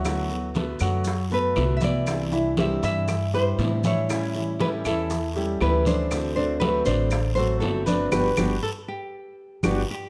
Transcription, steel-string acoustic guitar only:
\new Staff \with { instrumentName = "Steel-string acoustic guitar" } { \time 4/4 \key d \mixolydian \tempo 4 = 119 <d a b fis'>8 <a b fis'>8 <d a b fis'>4 r8 <a b fis'>8 <d a b fis'>8 <a b fis'>8 | <c e g d' e'>8 <g d' e'>8 <c e g d' e'>4 r8 <g d' e'>8 <c e g d' e'>8 <g d' e'>8 | <e g cis' e'>8 <g cis' e'>8 <e g cis' e'>4 r8 <g cis' e'>8 <e g cis' e'>8 <g cis' e'>8 | <d a c' fis'>8 <a c' fis'>8 <d a c' fis'>4 r8 <a c' fis'>8 <d a c' fis'>8 <a c' fis'>8 |
<g b d'>8 <g b d'>8 r2 <g b d'>8 r8 | }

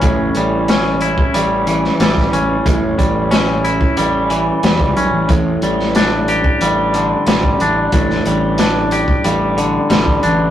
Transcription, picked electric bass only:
\new Staff \with { instrumentName = "Picked electric bass" } { \clef bass \time 4/4 \key a \mixolydian \tempo 4 = 91 a,,8 a,,4. a,,4 a,,8 a,,8 | a,,8 a,,4. a,,4 e,16 cis,16 b,,16 a,,16 | a,,8 a,,4. a,,4 a,,8 a,,8 | a,,8 a,,4. a,,4 a,,8 a,,8 | }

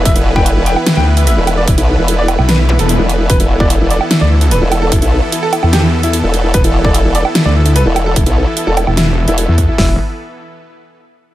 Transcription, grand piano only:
\new Staff \with { instrumentName = "Grand piano" } { \time 4/4 \key c \major \tempo 4 = 148 e''16 e'16 e'16 g''16 e'16 e'16 g''16 e'16 e'16 g''16 e'16 e'16 e''16 e'16 e'16 d''16 | e'16 e'16 r16 e'16 e'16 d''16 e'16 e'16 b'16 e'16 e'16 a'16 e'16 e'16 r16 e'16 | b'16 e'16 e'16 d''16 e'16 e'16 d''16 e'16 e'16 d''16 e'16 e'16 b'16 e'16 e'16 a'16 | e'16 e'16 r16 e'16 e'16 a'16 e'16 e'16 g'16 e'16 e'16 e'16 e'16 e'16 r16 e'16 |
b'16 e'16 e'16 d''16 e'16 e'16 d''16 e'16 e'16 d''16 e'16 e'16 b'16 e'16 e'16 a'16 | e'16 e'16 r16 e'16 e'16 a'16 e'16 e'16 e'16 e'16 e'16 e'16 e'16 e'16 r16 e'16 | e'8 r2. r8 | }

